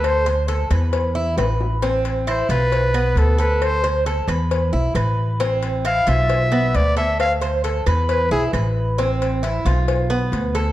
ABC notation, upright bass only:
X:1
M:4/4
L:1/8
Q:1/4=134
K:Am
V:1 name="Upright bass" clef=bass
D,,3 E,,3 A,,,2- | A,,,3 B,,,3 D,,2- | D,,3 E,,2 B,,, A,,,2- | A,,,3 B,,,3 D,,2- |
D,,3 E,,2 B,,, A,,,2- | A,,,3 B,,,3 D,,2 |]